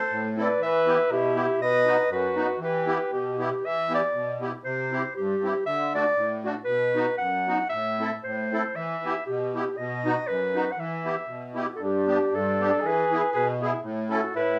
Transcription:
Already playing: A4 C5
0.10 A2
0.37 C4 E4 A4 B4 D5
0.59 E3 E5
0.64 B4
0.86 B3 E4 G4
1.08 B2 E4 G4
1.35 B3 E4 G4
1.59 B2 D#5
1.63 B4
1.86 B3 D#4 F#4
2.09 F#2 F#4 B4
2.36 B3 D#4 F#4
2.58 E3 G4
2.64 B4
2.86 B3 E4 G4
3.11 B2 G4
3.38 B3 E4 G4
3.63 E3 E5
3.90 B3 E4 G4
3.95 D5
4.13 B2
4.41 B3 E4 G4
4.64 C3 C5
4.92 C4 E4 G4
5.16 G2 G4
5.43 C4 E4 G4
5.65 D3 E5
5.95 A3 D4 F#4 D5
6.16 A2
6.44 A3 D4 F#4
6.65 B2 B4
6.94 B3 D#4 F#4
7.18 F#2 F#5
7.47 B3 D#4 F#4
7.69 A2 E5
7.99 C4 E4 A4
8.24 A2 C5
8.52 C4 E4 A4
8.76 E3 E5
9.04 B3 E4 G4
9.26 B2 G4
9.55 B3 E4 G4
9.77 B2 D#5
10.05 B3 D#4 F#4
10.27 F#2 B4
10.55 B3 D#4 F#4
10.72 F#5
10.78 E3 E5
11.05 B3 E4 G4
11.27 B2
11.55 B3 E4 G4
11.73 F#4 A4
11.78 G2 D4
11.83 G4
12.07 B3 D4 G4
12.30 G2 D4
12.35 A4
12.60 B3 D4 G4
12.82 E3 G#4
12.86 B4
13.12 B3 E4 G#4
13.33 B2 G#4 B4
13.60 B3 E4 G#4
13.82 A2
14.10 C#4 E4 F#4 A4
14.35 A2 E4 B4

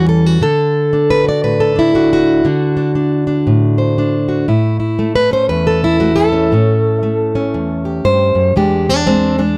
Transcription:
Already playing: E2 E3 G3 C#4
0.09 A4
0.26 F#4
0.42 D3 A4
0.93 D4
1.10 B4
1.24 F#4
1.29 D5
1.43 A2 B4
1.60 A4
1.76 D4 E4
1.95 D4 F#4
2.13 F#4
2.45 D3 D4
2.77 D4
2.95 D4
3.27 D4
3.47 A2
3.78 C5
3.98 D4
4.29 F#4
4.48 A2 E4
4.80 E4
4.99 A3
5.15 B4
5.31 C#4 C5
5.49 E2 B4
5.67 A4
5.84 E4
6.00 A3 F#4
6.16 A4
6.32 C#4
6.52 A2 C#4
7.03 A3
7.35 C#4
7.54 E2
7.85 G4
8.05 G2 C5
8.35 F#2
8.56 E2 G#3 D4 G4
8.89 D4
9.06 G#3 C4
9.38 G#3 D4

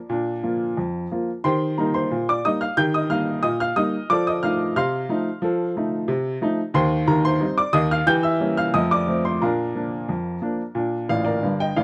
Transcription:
Already playing: D5 A#5 D6
0.09 A#2 D4
0.43 F3 A#3 F4
0.77 F2
1.12 F3 A#3 F4
1.44 D#3 G4 C5 G5 C6
1.78 G3 A#3 D#4 A#4 A#5
1.94 C5 C6
2.11 A#2
2.29 D5 D6
2.45 G3 A#3 D#4 D#5 D#6
2.61 F5 F6
2.77 D#3 G4 G5 G6
2.94 D#5 D#6
3.10 G3 A#3 D#4 F5 F6
3.43 A#2 D#5 D#6
3.60 F5 F6
3.76 G3 A#3 D#4 D#5 D#6
4.10 F3 A4 D5 D6
4.27 D#5 D#6
4.43 F3 A3 D#4 F5 F6
4.76 C3 F5 C6 F6
5.09 F3 A3 D#4
5.42 F3 A4
5.76 F3 A3 D#4
6.08 C3
6.41 F3 A3 D#4
6.74 D#2 D#3 C5 G5 C6
7.07 D#2 D#3 A#4 A#5
7.25 C5 C6
7.41 G3 C4 D#4
7.58 D5 D6
7.73 D#2 D#3 D#5 D#6
7.91 F5 F6
8.06 E3 G4 G5 G6
8.23 E5 E6
8.40 G3 A#3 C#4
8.57 F5 F6
8.74 F2 A3 D#5 D#6
8.91 D5 D6
9.08 F3 A3 C4
9.25 C5 C6
9.42 A#2 D4 A#4 F5 A#5
9.75 F3 A#3 D4
10.09 F2
10.42 F3 A#3 D4
10.75 A#2 D4
11.09 A1 A2 D5 F5
11.25 A#4 D5
11.43 G1 G2
11.60 D#5 G5
11.77 A1 A2 D5 F5

